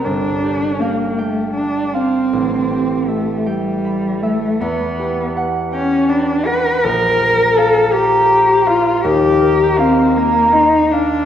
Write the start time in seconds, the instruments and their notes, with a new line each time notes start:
Already playing: harp G4 A#4 D5 G5
0.04 harp G1, cello D4
0.44 harp G4
0.80 cello A#3, harp F5
1.17 cello A3, harp G5
1.55 cello D4, harp A5
1.94 cello C4, harp F5
2.33 harp A1
2.71 harp G4
3.08 cello A3, harp E5
3.46 cello G3, harp G5
3.85 harp B5
4.22 cello A3, harp E5
4.60 harp E2, cello B3
5.00 harp G4
5.37 harp F#5
5.73 cello C#4, harp G5
6.09 cello D4, harp B5
6.46 cello B4, harp F#5
6.84 harp A#1, cello A#4
7.22 harp A#4
7.57 cello A4, harp F5
7.93 cello G4, harp A#5
8.32 harp C6
8.67 cello F4, harp F5
9.04 harp D#2, cello G4
9.41 harp A#4
9.79 cello C4, harp F5
10.16 cello A#3, harp A#5
10.53 cello D#4, harp C6
10.92 cello D4, harp F5